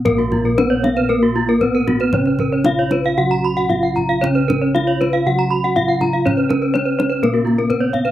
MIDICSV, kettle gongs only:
0, 0, Header, 1, 2, 480
1, 0, Start_track
1, 0, Tempo, 520382
1, 49, Time_signature, 4, 2, 24, 8
1, 4849, Tempo, 495868
1, 6289, Tempo, 475813
1, 7672, End_track
2, 0, Start_track
2, 0, Title_t, "Kettle gongs"
2, 0, Program_c, 0, 14
2, 0, Note_on_c, 0, 46, 55
2, 47, Note_on_c, 0, 70, 64
2, 91, Note_on_c, 0, 34, 84
2, 494, Note_off_c, 0, 46, 0
2, 527, Note_on_c, 0, 59, 30
2, 601, Note_off_c, 0, 59, 0
2, 1455, Note_off_c, 0, 70, 0
2, 1489, Note_on_c, 0, 59, 35
2, 1563, Note_off_c, 0, 59, 0
2, 1971, Note_on_c, 0, 61, 62
2, 2453, Note_on_c, 0, 59, 36
2, 2527, Note_off_c, 0, 59, 0
2, 2921, Note_off_c, 0, 34, 0
2, 2932, Note_on_c, 0, 49, 58
2, 3380, Note_off_c, 0, 61, 0
2, 3421, Note_on_c, 0, 59, 46
2, 3495, Note_off_c, 0, 59, 0
2, 3898, Note_on_c, 0, 61, 52
2, 4338, Note_off_c, 0, 49, 0
2, 4380, Note_on_c, 0, 59, 31
2, 4454, Note_off_c, 0, 59, 0
2, 4851, Note_on_c, 0, 49, 58
2, 5295, Note_off_c, 0, 61, 0
2, 5338, Note_on_c, 0, 59, 39
2, 5415, Note_off_c, 0, 59, 0
2, 5817, Note_on_c, 0, 61, 60
2, 6250, Note_off_c, 0, 49, 0
2, 6292, Note_on_c, 0, 59, 33
2, 6372, Note_off_c, 0, 59, 0
2, 6776, Note_on_c, 0, 46, 52
2, 7214, Note_off_c, 0, 61, 0
2, 7257, Note_on_c, 0, 59, 39
2, 7337, Note_off_c, 0, 59, 0
2, 7672, Note_off_c, 0, 46, 0
2, 7672, End_track
0, 0, End_of_file